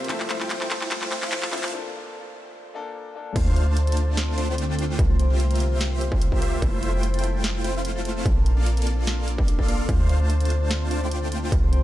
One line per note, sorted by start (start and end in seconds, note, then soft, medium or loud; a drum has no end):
0.00 0.12 C3 medium
0.00 0.09 C4 medium
0.00 0.85 D4 medium
0.00 0.11 F4 medium
0.00 0.15 F4 medium
0.00 2.24 G4 medium
0.00 0.12 A#4 medium
0.00 0.67 A#4 medium
0.00 0.12 C5 loud
0.00 0.20 C5 medium
0.00 0.15 F5 medium
0.00 0.22 G5 medium
0.00 riser medium
0.04 1.49 F3 medium
0.04 closed hi-hat medium
0.09 1.71 F1 medium
0.09 1.71 F3 medium
0.09 0.38 A3 loud
0.09 1.49 C4 medium
0.09 1.71 C4 medium
0.09 0.36 E4 medium
0.09 0.38 E4 medium
0.09 0.38 F4 medium
0.09 1.71 A4 medium
0.09 1.51 A4 medium
0.09 0.38 C5 medium
0.09 0.38 E5 loud
0.09 clap medium
0.09 closed hi-hat medium
0.20 0.50 C5 medium
0.20 clap medium
0.30 0.46 F5 medium
0.30 clap medium
0.30 closed hi-hat medium
0.40 1.09 A3 medium
0.40 0.70 E4 loud
0.40 1.09 E4 medium
0.40 1.09 F4 medium
0.40 1.09 C5 medium
0.40 1.09 G5 medium
0.40 clap medium
0.50 1.01 C5 medium
0.50 clap medium
0.50 closed hi-hat medium
0.61 0.81 A4 loud
0.61 clap medium
0.70 0.97 E4 loud
0.70 clap medium
0.70 closed hi-hat medium
0.81 1.42 A4 medium
0.81 clap medium
0.91 1.17 F4 loud
0.91 clap medium
0.91 closed hi-hat medium
1.02 3.00 C5 medium
1.02 clap medium
1.11 1.19 A3 medium
1.11 1.19 E4 medium
1.11 1.19 F4 medium
1.11 1.19 C5 medium
1.11 1.58 E5 medium
1.11 1.19 G5 loud
1.11 clap loud
1.11 closed hi-hat medium
1.22 1.71 A3 loud
1.22 1.31 E4 medium
1.22 1.71 E4 medium
1.22 1.71 F4 medium
1.22 1.71 C5 medium
1.22 1.71 F5 loud
1.22 clap medium
1.32 1.58 E4 medium
1.32 clap loud
1.32 closed hi-hat medium
1.42 1.62 A4 loud
1.42 clap medium
1.51 1.70 F3 loud
1.51 1.70 C4 medium
1.51 1.70 E4 medium
1.51 4.04 F4 medium
1.51 1.71 C5 loud
1.51 clap loud
1.51 closed hi-hat soft
1.58 closed hi-hat medium
1.63 3.83 A4 medium
1.63 clap medium
1.63 closed hi-hat soft
1.68 2.72 A#2 medium
1.68 closed hi-hat medium
1.72 2.72 A#3 medium
1.72 2.73 D4 medium
1.72 2.74 A4 medium
2.74 3.13 A#2 medium
2.74 3.13 A#3 medium
2.74 3.13 D4 medium
2.74 3.14 A4 loud
3.14 3.33 A#2 medium
3.14 3.33 A#3 medium
3.14 3.34 D4 medium
3.14 3.34 A4 medium
3.36 4.97 D2 medium
3.36 4.97 D3 medium
3.36 3.64 A3 medium
3.36 4.97 A3 medium
3.36 4.97 C4 medium
3.36 3.67 D4 medium
3.36 3.64 D4 medium
3.36 3.64 F4 medium
3.36 6.59 F4 medium
3.36 3.64 C5 medium
3.36 3.64 F5 loud
3.36 kick loud
3.36 closed hi-hat medium
3.36 crash loud
3.47 3.76 C5 medium
3.56 5.23 F5 medium
3.56 closed hi-hat medium
3.67 4.35 A3 medium
3.67 4.35 D4 medium
3.67 3.97 D4 loud
3.67 4.35 F4 medium
3.67 4.35 C5 medium
3.67 4.35 A5 medium
3.77 4.28 C5 medium
3.77 closed hi-hat medium
3.87 4.07 A4 loud
3.87 closed hi-hat medium
3.92 closed hi-hat medium
3.97 4.48 D4 loud
3.97 closed hi-hat medium
4.08 4.69 A4 medium
4.17 4.78 F4 loud
4.17 snare loud
4.17 closed hi-hat medium
4.28 5.09 C5 medium
4.38 4.46 A3 medium
4.38 4.46 D4 medium
4.38 4.46 F4 medium
4.38 4.46 C5 medium
4.38 6.22 D5 medium
4.38 4.46 A5 loud
4.38 closed hi-hat medium
4.49 4.98 A3 medium
4.49 4.98 D4 medium
4.49 4.58 D4 medium
4.49 4.98 F4 medium
4.49 4.98 C5 medium
4.49 4.98 G5 loud
4.58 7.38 D4 medium
4.58 closed hi-hat medium
4.69 4.89 A4 loud
4.79 4.99 F4 medium
4.79 closed hi-hat medium
4.89 5.57 A4 medium
4.99 6.60 C2 medium
4.99 6.61 C3 medium
4.99 6.61 G3 medium
4.99 6.61 A#3 medium
4.99 kick loud
4.99 closed hi-hat medium
5.10 5.39 C5 medium
5.19 6.75 G5 medium
5.19 closed hi-hat medium
5.30 6.40 A#3 medium
5.30 6.40 F4 medium
5.30 5.60 F4 loud
5.30 6.40 G4 medium
5.30 6.40 C5 medium
5.30 6.40 E5 medium
5.40 5.91 C5 medium
5.40 closed hi-hat medium
5.51 5.71 A#4 loud
5.51 closed hi-hat soft
5.56 closed hi-hat medium
5.60 6.11 F4 loud
5.60 closed hi-hat medium
5.71 6.32 A#4 medium
5.81 6.41 G4 loud
5.81 snare loud
5.81 closed hi-hat medium
5.91 6.73 C5 medium
6.01 6.68 F5 medium
6.01 closed hi-hat medium
6.12 6.21 F4 medium
6.12 kick loud
6.21 6.68 F4 medium
6.21 closed hi-hat medium
6.32 6.52 A#4 loud
6.32 kick medium
6.42 6.60 A#3 medium
6.42 6.60 F4 medium
6.42 6.60 G4 medium
6.42 8.77 G4 medium
6.42 6.60 C5 medium
6.42 6.60 E5 medium
6.42 closed hi-hat medium
6.53 7.20 A#4 medium
6.62 8.24 F1 medium
6.62 8.24 F3 medium
6.62 6.91 A3 loud
6.62 8.24 C4 medium
6.62 6.89 E4 medium
6.62 8.24 A4 medium
6.62 kick loud
6.62 closed hi-hat medium
6.73 7.03 C5 medium
6.83 6.99 F5 medium
6.83 closed hi-hat medium
6.93 7.62 A3 medium
6.93 7.23 E4 loud
6.93 7.62 E4 medium
6.93 7.62 F4 medium
6.93 7.62 C5 medium
6.93 7.62 G5 medium
7.03 7.54 C5 medium
7.03 closed hi-hat medium
7.14 7.34 A4 loud
7.14 closed hi-hat soft
7.19 closed hi-hat medium
7.23 7.50 E4 loud
7.23 closed hi-hat medium
7.34 7.95 A4 medium
7.44 7.70 F4 loud
7.44 snare loud
7.44 closed hi-hat medium
7.55 9.53 C5 medium
7.64 7.73 A3 medium
7.64 7.73 E4 medium
7.64 7.73 F4 medium
7.64 7.73 C5 medium
7.64 8.11 E5 medium
7.64 7.73 G5 loud
7.64 closed hi-hat medium
7.75 8.24 A3 loud
7.75 7.84 E4 medium
7.75 8.24 E4 medium
7.75 8.24 F4 medium
7.75 8.24 C5 medium
7.75 8.24 F5 loud
7.85 8.11 E4 medium
7.85 closed hi-hat medium
7.95 8.16 A4 loud
8.05 9.07 F4 medium
8.05 closed hi-hat medium
8.16 8.42 A4 medium
8.26 9.87 A#1 medium
8.26 9.87 A#3 medium
8.26 8.56 D4 medium
8.26 9.87 D4 medium
8.26 kick loud
8.26 closed hi-hat medium
8.36 8.66 A#4 medium
8.46 10.09 F5 medium
8.46 closed hi-hat medium
8.57 9.66 A#3 medium
8.57 8.86 D4 loud
8.57 9.66 F4 medium
8.57 9.66 A4 medium
8.57 9.66 D5 medium
8.57 9.66 F5 medium
8.66 8.83 A#4 medium
8.66 closed hi-hat medium
8.77 8.97 A4 loud
8.77 closed hi-hat soft
8.82 closed hi-hat medium
8.87 9.38 D4 loud
8.87 closed hi-hat medium
8.98 9.24 A4 medium
9.07 9.68 F4 loud
9.07 snare loud
9.07 closed hi-hat medium
9.18 9.65 A#4 medium
9.28 10.90 D5 medium
9.28 closed hi-hat medium
9.38 9.48 D4 medium
9.38 kick loud
9.48 9.88 D4 medium
9.48 closed hi-hat medium
9.59 9.79 A4 loud
9.59 kick medium
9.68 9.87 A#3 medium
9.68 9.87 F4 medium
9.68 10.70 F4 medium
9.68 9.87 A4 medium
9.68 9.87 D5 medium
9.68 9.87 F5 medium
9.68 closed hi-hat medium
9.79 10.40 A4 medium
9.89 11.50 D2 medium
9.89 11.50 D3 medium
9.89 10.17 A3 medium
9.89 11.50 C4 medium
9.89 10.17 D4 medium
9.89 10.20 D4 medium
9.89 10.17 F4 medium
9.89 11.83 F4 medium
9.89 10.17 C5 medium
9.89 10.17 F5 loud
9.89 kick loud
9.89 closed hi-hat medium
10.00 10.29 C5 medium
10.09 11.76 F5 medium
10.09 closed hi-hat medium
10.20 10.89 A3 medium
10.20 10.89 D4 medium
10.20 10.50 D4 loud
10.20 10.89 F4 medium
10.20 10.89 C5 medium
10.20 10.89 A5 medium
10.30 10.81 C5 medium
10.30 closed hi-hat medium
10.40 10.60 A4 loud
10.40 closed hi-hat soft
10.45 closed hi-hat medium
10.50 11.01 D4 loud
10.50 closed hi-hat medium
10.61 11.22 A4 medium
10.71 11.31 F4 loud
10.71 snare loud
10.71 closed hi-hat medium
10.81 11.63 C5 medium
10.91 10.99 A3 medium
10.91 10.99 D4 medium
10.91 10.99 F4 medium
10.91 10.99 C5 medium
10.91 11.83 D5 medium
10.91 10.99 A5 loud
10.91 closed hi-hat medium
11.02 11.51 A3 loud
11.02 11.11 D4 medium
11.02 11.51 D4 medium
11.02 11.51 F4 medium
11.02 11.51 C5 medium
11.02 11.51 G5 loud
11.11 11.83 D4 medium
11.11 closed hi-hat medium
11.22 11.42 A4 loud
11.32 11.52 F4 medium
11.32 closed hi-hat medium
11.42 11.83 A4 medium
11.52 11.83 C2 loud
11.52 11.83 C3 medium
11.52 11.83 G3 medium
11.52 11.83 A#3 medium
11.52 11.83 F4 medium
11.52 kick loud
11.52 closed hi-hat medium
11.63 11.83 C5 medium
11.73 11.83 G5 medium
11.73 closed hi-hat medium